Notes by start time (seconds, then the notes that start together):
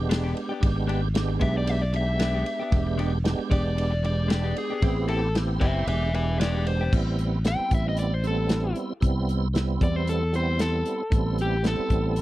Already playing: E1 G#3 B3 D4 G4 E5
0.09 G#3 B3 D4 G4, snare, ride
0.24 G#3 B3 D4 G4
0.37 muted clean electric guitar stroke, ride
0.49 B3 D4 G4
0.60 G#1 G#3 B3 D4 G4, kick, ride
0.76 muted clean electric guitar stroke
0.87 G#3 B3 D4 G4, ride
1.02 muted clean electric guitar stroke
1.14 G#3 B3 D4 G4, snare, ride
1.29 muted clean electric guitar stroke
1.39 B1 G#3 B3 D4 G4 E5, kick, ride
1.55 D5, muted clean electric guitar stroke
1.67 E5, muted clean electric guitar stroke, ride
1.82 D5, muted clean electric guitar stroke
1.93 G#3 B3 D4 G4 E5, muted clean electric guitar stroke, ride
2.19 G#3 B3 D4 G4, snare, ride
2.34 G#3 B3 D4 G4
2.46 ride
2.60 B3 D4 G4
2.71 E1 G#3 B3 D4 G4, kick, ride
2.87 muted clean electric guitar stroke
2.98 G#3 B3 D4 G4, ride
3.13 muted clean electric guitar stroke
3.24 G#3 B3 D4 G4, snare, ride
3.39 muted clean electric guitar stroke
3.50 E1 G#3 B3 D4 G4 D5, kick, ride
3.64 muted clean electric guitar stroke
3.76 muted clean electric guitar stroke, ride
3.91 muted clean electric guitar stroke
4.03 G#3 B3 D4 G4 D5, muted clean electric guitar stroke, ride
4.28 G#3 B3 D4 G4, snare, ride
4.44 G#3 B3 D4 G4
4.56 G#4, muted clean electric guitar stroke, ride
4.70 B3 D4 G4
4.82 A1 B3 C4 E4 G4, kick, ride
4.97 muted clean electric guitar stroke
5.08 C4 E4 G4 A4, ride
5.22 muted clean electric guitar stroke
5.35 B3 C4 E4 G4, snare, ride
5.48 muted clean electric guitar stroke
5.60 F#1 C4 E4 G4 C5 E5, kick, ride
5.75 muted clean electric guitar stroke
5.87 E1 G#3 B3 D4 G4 B4 E5, muted clean electric guitar stroke, ride
6.02 muted clean electric guitar stroke
6.14 G#3 B3 D4 G4 B4 E5, muted clean electric guitar stroke, ride
6.40 G#3 B3 D4 G4 B4 D5, snare, ride
6.55 G#3 B3 D4 G4
6.67 C5, muted clean electric guitar stroke, ride
6.81 B3 D4 G4
6.92 A1 G3 B3 C4 E4, kick, crash
7.19 closed hi-hat
7.44 G3 B3 C4 E4 G5, snare, closed hi-hat
7.60 muted fingered electric bass stroke
7.71 A1 E5, kick, closed hi-hat
7.89 D#5
7.97 D5, closed hi-hat
8.14 C5
8.23 G3 B3 C4 E4, closed hi-hat
8.27 A4
8.49 snare, closed hi-hat
8.75 closed hi-hat
9.00 C2 G3 B3 C4 E4, kick, closed hi-hat
9.29 closed hi-hat
9.53 G3 B3 C4 E4, snare, closed hi-hat
9.81 E2 D5, kick, closed hi-hat
9.96 C5
10.07 A4, closed hi-hat
10.32 G3 B3 C4 E4 C5, closed hi-hat
10.59 A4, snare, closed hi-hat
10.86 closed hi-hat
11.10 A1 G3 B3 C4 E4, kick, closed hi-hat
11.38 G4, closed hi-hat
11.63 G3 B3 C4 E4, snare, closed hi-hat
11.67 A4
11.90 A1, kick, closed hi-hat
12.16 closed hi-hat